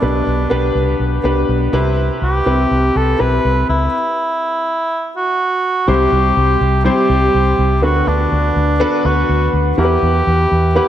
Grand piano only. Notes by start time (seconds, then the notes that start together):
0.01 B2 B3 D4 G4 B4
0.50 B3 D4 G4 B4
1.24 B3 D4 G4 B4
1.73 C3 C4 E4 G4 B4
2.46 C4 E4 G4 B4
3.18 C4 E4 G4 B4
5.87 C3 G3 C4 E4 G4 C5
6.84 G3 C4 E4 G4 C5
7.82 D3 B3 D4 F#4 A4 B4
8.80 B3 D4 F#4 A4 B4
9.78 E3 B3 E4 G4 A#4 F#5
9.85 B4
10.75 B3 E4 G4 B4 F#5